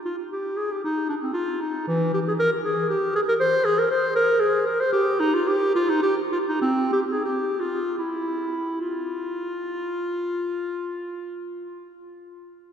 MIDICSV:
0, 0, Header, 1, 2, 480
1, 0, Start_track
1, 0, Key_signature, -4, "minor"
1, 0, Tempo, 519931
1, 287, Time_signature, 3, 2, 24, 8
1, 2208, Tempo, 505902
1, 4608, Tempo, 549954
1, 5568, Tempo, 591133
1, 6048, Tempo, 645161
1, 6528, Tempo, 730816
1, 7008, Tempo, 806452
1, 9828, End_track
2, 0, Start_track
2, 0, Title_t, "Clarinet"
2, 0, Program_c, 0, 71
2, 44, Note_on_c, 0, 65, 68
2, 153, Note_off_c, 0, 65, 0
2, 295, Note_on_c, 0, 67, 78
2, 529, Note_on_c, 0, 68, 87
2, 543, Note_off_c, 0, 67, 0
2, 664, Note_on_c, 0, 67, 64
2, 678, Note_off_c, 0, 68, 0
2, 771, Note_off_c, 0, 67, 0
2, 776, Note_on_c, 0, 63, 80
2, 1001, Note_off_c, 0, 63, 0
2, 1007, Note_on_c, 0, 62, 69
2, 1059, Note_off_c, 0, 62, 0
2, 1133, Note_on_c, 0, 60, 66
2, 1225, Note_off_c, 0, 60, 0
2, 1230, Note_on_c, 0, 65, 85
2, 1487, Note_on_c, 0, 63, 71
2, 1501, Note_off_c, 0, 65, 0
2, 1724, Note_off_c, 0, 63, 0
2, 1729, Note_on_c, 0, 52, 93
2, 1970, Note_off_c, 0, 52, 0
2, 1974, Note_on_c, 0, 67, 86
2, 2027, Note_off_c, 0, 67, 0
2, 2103, Note_on_c, 0, 68, 78
2, 2152, Note_off_c, 0, 68, 0
2, 2210, Note_on_c, 0, 70, 101
2, 2316, Note_off_c, 0, 70, 0
2, 2447, Note_on_c, 0, 68, 87
2, 2680, Note_off_c, 0, 68, 0
2, 2684, Note_on_c, 0, 67, 84
2, 2917, Note_off_c, 0, 67, 0
2, 2931, Note_on_c, 0, 68, 92
2, 2983, Note_off_c, 0, 68, 0
2, 3054, Note_on_c, 0, 70, 99
2, 3105, Note_off_c, 0, 70, 0
2, 3164, Note_on_c, 0, 72, 108
2, 3400, Note_on_c, 0, 68, 110
2, 3414, Note_off_c, 0, 72, 0
2, 3531, Note_on_c, 0, 70, 86
2, 3545, Note_off_c, 0, 68, 0
2, 3640, Note_off_c, 0, 70, 0
2, 3645, Note_on_c, 0, 72, 104
2, 3875, Note_off_c, 0, 72, 0
2, 3879, Note_on_c, 0, 70, 104
2, 4115, Note_on_c, 0, 68, 98
2, 4129, Note_off_c, 0, 70, 0
2, 4359, Note_off_c, 0, 68, 0
2, 4364, Note_on_c, 0, 70, 88
2, 4493, Note_on_c, 0, 72, 97
2, 4507, Note_off_c, 0, 70, 0
2, 4606, Note_off_c, 0, 72, 0
2, 4611, Note_on_c, 0, 67, 102
2, 4847, Note_on_c, 0, 63, 101
2, 4860, Note_off_c, 0, 67, 0
2, 4976, Note_on_c, 0, 65, 87
2, 4989, Note_off_c, 0, 63, 0
2, 5089, Note_on_c, 0, 67, 98
2, 5103, Note_off_c, 0, 65, 0
2, 5327, Note_off_c, 0, 67, 0
2, 5333, Note_on_c, 0, 65, 99
2, 5458, Note_on_c, 0, 63, 93
2, 5471, Note_off_c, 0, 65, 0
2, 5564, Note_off_c, 0, 63, 0
2, 5569, Note_on_c, 0, 67, 92
2, 5675, Note_off_c, 0, 67, 0
2, 5812, Note_on_c, 0, 65, 75
2, 5864, Note_off_c, 0, 65, 0
2, 5937, Note_on_c, 0, 63, 83
2, 6044, Note_off_c, 0, 63, 0
2, 6049, Note_on_c, 0, 60, 94
2, 6277, Note_off_c, 0, 60, 0
2, 6282, Note_on_c, 0, 67, 95
2, 6336, Note_off_c, 0, 67, 0
2, 6415, Note_on_c, 0, 68, 81
2, 6520, Note_off_c, 0, 68, 0
2, 6525, Note_on_c, 0, 67, 85
2, 6754, Note_on_c, 0, 65, 87
2, 6764, Note_off_c, 0, 67, 0
2, 7001, Note_off_c, 0, 65, 0
2, 7005, Note_on_c, 0, 64, 70
2, 7487, Note_off_c, 0, 64, 0
2, 7495, Note_on_c, 0, 65, 78
2, 9487, Note_off_c, 0, 65, 0
2, 9828, End_track
0, 0, End_of_file